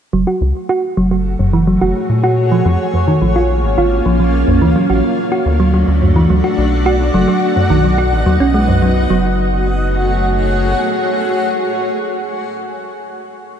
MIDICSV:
0, 0, Header, 1, 4, 480
1, 0, Start_track
1, 0, Key_signature, 3, "minor"
1, 0, Tempo, 560748
1, 114, Time_signature, 4, 2, 24, 8
1, 11641, End_track
2, 0, Start_track
2, 0, Title_t, "Ambient pad"
2, 0, Program_c, 0, 92
2, 114, Note_on_c, 0, 57, 82
2, 304, Note_on_c, 0, 66, 78
2, 974, Note_on_c, 0, 68, 88
2, 977, Note_on_c, 0, 73, 72
2, 2034, Note_off_c, 0, 57, 0
2, 2034, Note_off_c, 0, 66, 0
2, 2034, Note_on_c, 0, 58, 75
2, 2455, Note_on_c, 0, 61, 95
2, 2461, Note_on_c, 0, 65, 75
2, 2736, Note_on_c, 0, 77, 85
2, 2801, Note_off_c, 0, 68, 0
2, 3951, Note_on_c, 0, 57, 77
2, 3953, Note_off_c, 0, 61, 0
2, 3953, Note_off_c, 0, 73, 0
2, 3953, Note_off_c, 0, 77, 0
2, 3954, Note_off_c, 0, 58, 0
2, 3954, Note_off_c, 0, 65, 0
2, 4079, Note_on_c, 0, 66, 84
2, 4311, Note_on_c, 0, 62, 85
2, 4561, Note_on_c, 0, 74, 90
2, 4818, Note_on_c, 0, 78, 89
2, 5872, Note_off_c, 0, 57, 0
2, 5873, Note_off_c, 0, 74, 0
2, 5873, Note_on_c, 0, 59, 85
2, 5874, Note_off_c, 0, 62, 0
2, 5923, Note_on_c, 0, 63, 89
2, 6338, Note_on_c, 0, 75, 81
2, 7793, Note_off_c, 0, 59, 0
2, 7793, Note_off_c, 0, 63, 0
2, 7793, Note_off_c, 0, 66, 0
2, 7794, Note_off_c, 0, 75, 0
2, 7794, Note_off_c, 0, 78, 0
2, 7794, Note_on_c, 0, 57, 78
2, 7868, Note_on_c, 0, 66, 79
2, 7939, Note_on_c, 0, 68, 79
2, 8010, Note_on_c, 0, 73, 78
2, 8083, Note_on_c, 0, 78, 82
2, 10364, Note_off_c, 0, 57, 0
2, 10364, Note_off_c, 0, 73, 0
2, 10365, Note_off_c, 0, 66, 0
2, 10365, Note_off_c, 0, 68, 0
2, 10365, Note_off_c, 0, 78, 0
2, 11641, End_track
3, 0, Start_track
3, 0, Title_t, "Synth arpeggio sound"
3, 0, Program_c, 1, 84
3, 113, Note_on_c, 1, 54, 87
3, 213, Note_off_c, 1, 54, 0
3, 233, Note_on_c, 1, 66, 75
3, 273, Note_off_c, 1, 66, 0
3, 594, Note_on_c, 1, 66, 103
3, 693, Note_off_c, 1, 66, 0
3, 833, Note_on_c, 1, 54, 97
3, 899, Note_off_c, 1, 54, 0
3, 953, Note_on_c, 1, 54, 78
3, 993, Note_off_c, 1, 54, 0
3, 1193, Note_on_c, 1, 42, 77
3, 1259, Note_off_c, 1, 42, 0
3, 1313, Note_on_c, 1, 52, 101
3, 1379, Note_off_c, 1, 52, 0
3, 1433, Note_on_c, 1, 54, 74
3, 1532, Note_off_c, 1, 54, 0
3, 1553, Note_on_c, 1, 66, 81
3, 1593, Note_off_c, 1, 66, 0
3, 1914, Note_on_c, 1, 66, 107
3, 2013, Note_off_c, 1, 66, 0
3, 2154, Note_on_c, 1, 53, 103
3, 2220, Note_off_c, 1, 53, 0
3, 2274, Note_on_c, 1, 53, 81
3, 2313, Note_off_c, 1, 53, 0
3, 2514, Note_on_c, 1, 41, 85
3, 2580, Note_off_c, 1, 41, 0
3, 2633, Note_on_c, 1, 51, 93
3, 2699, Note_off_c, 1, 51, 0
3, 2754, Note_on_c, 1, 53, 76
3, 2853, Note_off_c, 1, 53, 0
3, 2874, Note_on_c, 1, 65, 75
3, 2913, Note_off_c, 1, 65, 0
3, 3234, Note_on_c, 1, 65, 99
3, 3333, Note_off_c, 1, 65, 0
3, 3473, Note_on_c, 1, 53, 99
3, 3539, Note_off_c, 1, 53, 0
3, 3593, Note_on_c, 1, 53, 77
3, 3633, Note_off_c, 1, 53, 0
3, 3833, Note_on_c, 1, 41, 80
3, 3899, Note_off_c, 1, 41, 0
3, 3953, Note_on_c, 1, 52, 104
3, 4019, Note_off_c, 1, 52, 0
3, 4073, Note_on_c, 1, 54, 79
3, 4172, Note_off_c, 1, 54, 0
3, 4192, Note_on_c, 1, 66, 76
3, 4232, Note_off_c, 1, 66, 0
3, 4553, Note_on_c, 1, 66, 95
3, 4652, Note_off_c, 1, 66, 0
3, 4792, Note_on_c, 1, 54, 102
3, 4859, Note_off_c, 1, 54, 0
3, 4912, Note_on_c, 1, 54, 83
3, 4953, Note_off_c, 1, 54, 0
3, 5153, Note_on_c, 1, 42, 74
3, 5219, Note_off_c, 1, 42, 0
3, 5273, Note_on_c, 1, 52, 99
3, 5340, Note_off_c, 1, 52, 0
3, 5393, Note_on_c, 1, 54, 80
3, 5492, Note_off_c, 1, 54, 0
3, 5513, Note_on_c, 1, 66, 74
3, 5553, Note_off_c, 1, 66, 0
3, 5873, Note_on_c, 1, 66, 106
3, 5972, Note_off_c, 1, 66, 0
3, 6113, Note_on_c, 1, 54, 103
3, 6179, Note_off_c, 1, 54, 0
3, 6233, Note_on_c, 1, 54, 79
3, 6273, Note_off_c, 1, 54, 0
3, 6473, Note_on_c, 1, 42, 74
3, 6539, Note_off_c, 1, 42, 0
3, 6593, Note_on_c, 1, 51, 100
3, 6659, Note_off_c, 1, 51, 0
3, 6713, Note_on_c, 1, 54, 78
3, 6813, Note_off_c, 1, 54, 0
3, 6833, Note_on_c, 1, 66, 85
3, 6873, Note_off_c, 1, 66, 0
3, 7073, Note_on_c, 1, 54, 76
3, 7139, Note_off_c, 1, 54, 0
3, 7193, Note_on_c, 1, 61, 75
3, 7259, Note_off_c, 1, 61, 0
3, 7313, Note_on_c, 1, 56, 83
3, 7353, Note_off_c, 1, 56, 0
3, 7433, Note_on_c, 1, 42, 99
3, 7499, Note_off_c, 1, 42, 0
3, 7553, Note_on_c, 1, 54, 78
3, 7652, Note_off_c, 1, 54, 0
3, 7793, Note_on_c, 1, 54, 97
3, 8016, Note_off_c, 1, 54, 0
3, 11641, End_track
4, 0, Start_track
4, 0, Title_t, "Analog synth bass"
4, 0, Program_c, 2, 38
4, 113, Note_on_c, 2, 30, 98
4, 213, Note_off_c, 2, 30, 0
4, 353, Note_on_c, 2, 37, 94
4, 453, Note_off_c, 2, 37, 0
4, 833, Note_on_c, 2, 30, 79
4, 1161, Note_off_c, 2, 30, 0
4, 1193, Note_on_c, 2, 30, 97
4, 1521, Note_off_c, 2, 30, 0
4, 1554, Note_on_c, 2, 30, 89
4, 1654, Note_off_c, 2, 30, 0
4, 1794, Note_on_c, 2, 46, 81
4, 2241, Note_off_c, 2, 46, 0
4, 2273, Note_on_c, 2, 41, 98
4, 2373, Note_off_c, 2, 41, 0
4, 2753, Note_on_c, 2, 34, 82
4, 3113, Note_on_c, 2, 32, 96
4, 3126, Note_off_c, 2, 34, 0
4, 3213, Note_off_c, 2, 32, 0
4, 3233, Note_on_c, 2, 32, 96
4, 3433, Note_off_c, 2, 32, 0
4, 3473, Note_on_c, 2, 34, 83
4, 3801, Note_off_c, 2, 34, 0
4, 3833, Note_on_c, 2, 34, 101
4, 3933, Note_off_c, 2, 34, 0
4, 3954, Note_on_c, 2, 38, 100
4, 4053, Note_off_c, 2, 38, 0
4, 4194, Note_on_c, 2, 33, 104
4, 4293, Note_off_c, 2, 33, 0
4, 4673, Note_on_c, 2, 38, 82
4, 5001, Note_off_c, 2, 38, 0
4, 5033, Note_on_c, 2, 38, 96
4, 5361, Note_off_c, 2, 38, 0
4, 5393, Note_on_c, 2, 38, 86
4, 5493, Note_off_c, 2, 38, 0
4, 5633, Note_on_c, 2, 35, 84
4, 6081, Note_off_c, 2, 35, 0
4, 6113, Note_on_c, 2, 30, 99
4, 6213, Note_off_c, 2, 30, 0
4, 6594, Note_on_c, 2, 35, 83
4, 6954, Note_on_c, 2, 33, 98
4, 6967, Note_off_c, 2, 35, 0
4, 7054, Note_off_c, 2, 33, 0
4, 7073, Note_on_c, 2, 39, 95
4, 7173, Note_off_c, 2, 39, 0
4, 7193, Note_on_c, 2, 35, 86
4, 7761, Note_off_c, 2, 35, 0
4, 7793, Note_on_c, 2, 30, 96
4, 9199, Note_off_c, 2, 30, 0
4, 11641, End_track
0, 0, End_of_file